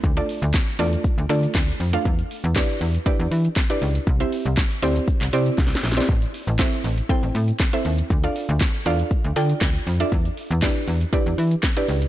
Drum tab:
HH |---x--o--x-----x--o--x-----x--o--x-----x--o--x--|---x--o--x-----x--o--x-----x--o--x-----x--o--x--|---x--o--x-----x--o--x-----x--o--x-----x--o--x--|---x--o--x-----x--o--x-----x--o--x-----x--o--x--|
SH |x--x--x--x--x--x--x--x--x--x--x--x--x--x--x--x--|x--x--x--x--x--x--x--x--x--x--x--x--x--x--x--x--|x--x--x--x--x--x--x--x--x--x--x--x--x--x--x--x--|x--x--x--x--x--x--x--x--x--x--x--x--x--x--x--x--|
CP |------------x-----------------------x-----------|------------x-----------------------x-----------|------------x--------------x--------------------|------------x-----------------------x-----------|
SD |------------o-----------------------o-----------|------------o-----------------------o-----------|------------o-----------------------o-o-o-o-o-o-|------------o-----------------------o-----------|
BD |o-----------o-----------o-----------o-----------|o-----------o-----------o-----------o-----------|o-----------o-----------o-----------o-----------|o-----------o-----------o-----------o-----------|

HH |---x--o--x-----x--o--x-----x--o--x-----x--o--x--|---x--o--x-----x--o--x-----x--o--x-----x--o--x--|
SH |x--x--x--x--x--x--x--x--x--x--x--x--x--x--x--x--|x--x--x--x--x--x--x--x--x--x--x--x--x--x--x--x--|
CP |------------x-----------------------x-----------|------------x-----------------------x-----------|
SD |------------o-----------------------o-----------|------------o-----------------------o-----------|
BD |o-----------o-----------o-----------o-----------|o-----------o-----------o-----------o-----------|